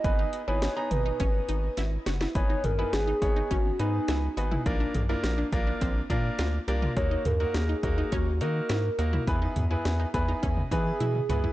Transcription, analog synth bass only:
X:1
M:4/4
L:1/16
Q:1/4=104
K:G#m
V:1 name="Analog synth bass" clef=bass
G,,,2 z G,,,2 z G,,,2 G,,,2 G,,,2 G,,,2 F,,,2 | G,,,2 G,,,2 G,,,2 G,,,2 G,,,2 G,,2 C,,2 G,,,2 | A,,,2 A,,,2 A,,,2 A,,,2 A,,,2 A,,2 =D,,2 ^B,,,2 | D,,2 D,,2 D,,2 D,,2 D,,2 D,2 G,,2 D,,2 |
E,,2 E,,2 E,,2 E,,2 E,,2 E,2 B,,2 C,,2 |]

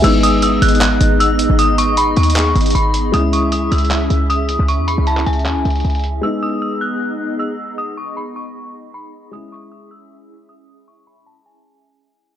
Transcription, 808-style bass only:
X:1
M:4/4
L:1/16
Q:1/4=155
K:G#m
V:1 name="808-style bass" clef=bass
G,,,6 G,,,4 G,,,4- G,,, G,,,- | G,,,6 D,,4 G,,,2 G,,,4 | C,,6 C,,4 C,,4- C,, C,,- | C,, E,,2 C,,3 C,,2 D,, C,, C,,2 C,,4 |
z16 | z16 | z16 | z16 |]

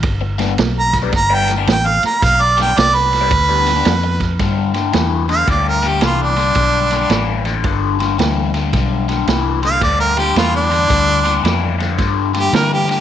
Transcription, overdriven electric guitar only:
X:1
M:4/4
L:1/16
Q:"Swing" 1/4=111
K:Gmix
V:1 name="Overdriven electric guitar" clef=bass
z2 [G,,G,B,D] z4 [G,,G,B,D] z [G,,G,B,D] z [G,,G,B,D] z4 | z2 [G,,G,B,D] z4 [G,,G,B,D] z [G,,G,B,D] z [G,,G,B,D] z4 | [G,,D,]2 [G,,D,]2 [G,,E,]2 [G,,D,]2 [G,,D,]2 [G,,D,]2 [G,,E,]2 [G,,D,]2 | [G,,D,]2 [G,,D,]2 [G,,E,]2 [G,,D,]2 [G,,D,]2 [G,,D,]2 [G,,E,]2 [G,,D,]2 |
[G,,D,]2 [G,,D,]2 [G,,E,]2 [G,,D,]2 [G,,D,]2 [G,,D,]2 [G,,E,]2 [G,,D,]2 | [G,,D,]2 [G,,D,]2 [G,,E,]2 [G,,D,]2 [G,,D,]2 [G,,D,]2 [G,,E,]2 [G,,D,]2 |]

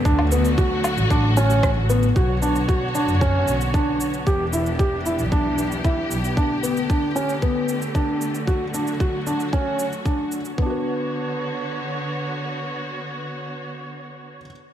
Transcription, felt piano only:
X:1
M:4/4
L:1/8
Q:1/4=114
K:Bm
V:1 name="Felt piano"
D B, F2 D C2 B, | F D F D C2 D2 | G E G E D2 E2 | D B, D C B,2 D2 |
F D F D C2 D2 | [B,DFB]8- | [B,DFB]8 |]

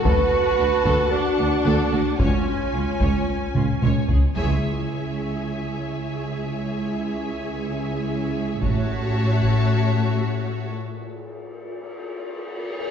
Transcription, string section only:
X:1
M:4/4
L:1/8
Q:1/4=112
K:C#phr
V:1 name="String section"
z8 | z8 | [K:C#m] [G,Gce]8- | [G,Gce]8 |
[A,Fce]8 | z8 |]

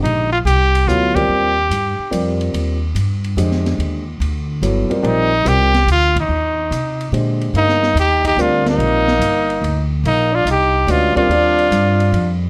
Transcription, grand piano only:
X:1
M:3/4
L:1/8
Q:"Swing" 1/4=144
K:Eb
V:1 name="Grand piano"
[D,A,Gce] z3 [_G,_C_F=A_d] [=G,=C=FB=d]- | [G,CFBd] z3 [G,CFBd]2- | [G,CFBd] z3 [D,A,Gce]2- | [D,A,Gce] z3 [_G,_C_F=A_d] [=G,=C=FB=d] |
[G,CFBd] z [G,CFBd] z3 | z4 [D,A,Gce]2- | [D,A,Gce] z3 [G,CFBd]2- | [G,CFBd] z4 z |
z4 [A,_D_G_ce] [=G,=CFB=d] | [G,CFBd]4- [G,CFBd] z |]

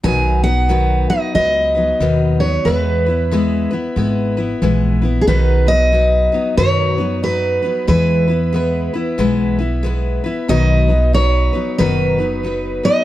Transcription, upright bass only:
X:1
M:4/4
L:1/8
Q:"Swing" 1/4=92
K:B
V:1 name="Upright bass" clef=bass
B,,,4 C,,2 D,,2 | E,,4 G,,,2 A,,,2 | B,,,4 F,,4 | E,,4 B,,,4 |
B,,,4 F,,,4 |]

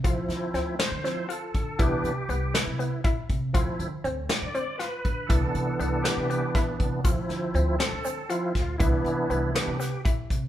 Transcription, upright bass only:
X:1
M:7/8
L:1/16
Q:1/4=120
K:Ddor
V:1 name="Upright bass" clef=bass
D,, z D, z D,,2 z D,2 z3 D,2 | C,, z C, z C,,2 z C,2 z3 C,2 | D,, z D, z D,,2 z D,2 z3 D,2 | C,, z C, z C,,2 z C,2 z3 C,2 |
D,, z D, z D,,2 z D,2 z3 D,,2 | C,, z C, z C,,2 z C,2 z3 C,2 |]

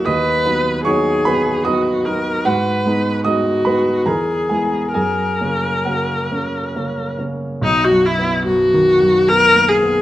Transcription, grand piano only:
X:1
M:3/4
L:1/8
Q:1/4=74
K:B
V:1 name="Grand piano"
[dd']2 [cc'] [Bb] [dd'] z | [Ff]2 [dd'] [Bb] [Aa] [Gg] | [Gg]2 [Ff]2 z2 | z6 |]
V:2 name="Grand piano"
D,, [F,B,D] [F,B,D] [F,B,D] [F,B,D] [F,B,D] | G,, [G,B,D] [G,B,D] [G,B,D] E,, [G,B,E] | F,, [C,A,C] [C,A,C] [C,A,C] [C,A,C] [C,A,C] | (3B,,, F,, B, (3F,, D, F,, (3B, A, B, |]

